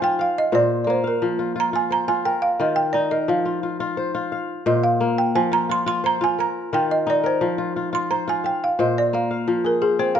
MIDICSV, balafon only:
0, 0, Header, 1, 2, 480
1, 0, Start_track
1, 0, Tempo, 343840
1, 1710, Time_signature, 12, 3, 24, 8
1, 14236, End_track
2, 0, Start_track
2, 0, Title_t, "Balafon"
2, 0, Program_c, 0, 12
2, 52, Note_on_c, 0, 79, 98
2, 290, Note_off_c, 0, 79, 0
2, 293, Note_on_c, 0, 77, 82
2, 530, Note_off_c, 0, 77, 0
2, 536, Note_on_c, 0, 75, 94
2, 748, Note_off_c, 0, 75, 0
2, 767, Note_on_c, 0, 74, 90
2, 1163, Note_off_c, 0, 74, 0
2, 1179, Note_on_c, 0, 74, 58
2, 1235, Note_off_c, 0, 74, 0
2, 1257, Note_on_c, 0, 72, 85
2, 1490, Note_off_c, 0, 72, 0
2, 1500, Note_on_c, 0, 70, 67
2, 1709, Note_off_c, 0, 70, 0
2, 2234, Note_on_c, 0, 82, 102
2, 2452, Note_on_c, 0, 80, 90
2, 2457, Note_off_c, 0, 82, 0
2, 2684, Note_on_c, 0, 82, 98
2, 2686, Note_off_c, 0, 80, 0
2, 2907, Note_on_c, 0, 80, 96
2, 2922, Note_off_c, 0, 82, 0
2, 3147, Note_on_c, 0, 79, 86
2, 3153, Note_off_c, 0, 80, 0
2, 3369, Note_off_c, 0, 79, 0
2, 3378, Note_on_c, 0, 77, 94
2, 3487, Note_off_c, 0, 77, 0
2, 3640, Note_on_c, 0, 75, 78
2, 3852, Note_on_c, 0, 79, 92
2, 3855, Note_off_c, 0, 75, 0
2, 4089, Note_on_c, 0, 74, 84
2, 4105, Note_off_c, 0, 79, 0
2, 4343, Note_off_c, 0, 74, 0
2, 4346, Note_on_c, 0, 75, 74
2, 4453, Note_off_c, 0, 75, 0
2, 4598, Note_on_c, 0, 77, 74
2, 5732, Note_off_c, 0, 77, 0
2, 6516, Note_on_c, 0, 75, 87
2, 6620, Note_off_c, 0, 75, 0
2, 6750, Note_on_c, 0, 77, 94
2, 7236, Note_on_c, 0, 79, 91
2, 7238, Note_off_c, 0, 77, 0
2, 7340, Note_off_c, 0, 79, 0
2, 7477, Note_on_c, 0, 80, 100
2, 7714, Note_off_c, 0, 80, 0
2, 7721, Note_on_c, 0, 82, 104
2, 7956, Note_off_c, 0, 82, 0
2, 7978, Note_on_c, 0, 84, 107
2, 8187, Note_off_c, 0, 84, 0
2, 8204, Note_on_c, 0, 84, 99
2, 8414, Note_off_c, 0, 84, 0
2, 8461, Note_on_c, 0, 82, 102
2, 8686, Note_off_c, 0, 82, 0
2, 8708, Note_on_c, 0, 80, 97
2, 8804, Note_off_c, 0, 80, 0
2, 8939, Note_on_c, 0, 82, 93
2, 9412, Note_off_c, 0, 82, 0
2, 9414, Note_on_c, 0, 79, 90
2, 9643, Note_off_c, 0, 79, 0
2, 9652, Note_on_c, 0, 75, 86
2, 9882, Note_off_c, 0, 75, 0
2, 9909, Note_on_c, 0, 74, 93
2, 10131, Note_off_c, 0, 74, 0
2, 10139, Note_on_c, 0, 72, 84
2, 10792, Note_off_c, 0, 72, 0
2, 11096, Note_on_c, 0, 84, 96
2, 11317, Note_on_c, 0, 82, 87
2, 11326, Note_off_c, 0, 84, 0
2, 11534, Note_off_c, 0, 82, 0
2, 11578, Note_on_c, 0, 80, 88
2, 11808, Note_off_c, 0, 80, 0
2, 11808, Note_on_c, 0, 79, 84
2, 12021, Note_off_c, 0, 79, 0
2, 12059, Note_on_c, 0, 77, 83
2, 12267, Note_off_c, 0, 77, 0
2, 12285, Note_on_c, 0, 75, 75
2, 12523, Note_off_c, 0, 75, 0
2, 12540, Note_on_c, 0, 74, 86
2, 12767, Note_on_c, 0, 77, 77
2, 12771, Note_off_c, 0, 74, 0
2, 12983, Note_off_c, 0, 77, 0
2, 13487, Note_on_c, 0, 70, 82
2, 13705, Note_off_c, 0, 70, 0
2, 13706, Note_on_c, 0, 68, 83
2, 13953, Note_on_c, 0, 72, 89
2, 13959, Note_off_c, 0, 68, 0
2, 14170, Note_on_c, 0, 77, 96
2, 14203, Note_off_c, 0, 72, 0
2, 14236, Note_off_c, 0, 77, 0
2, 14236, End_track
0, 0, End_of_file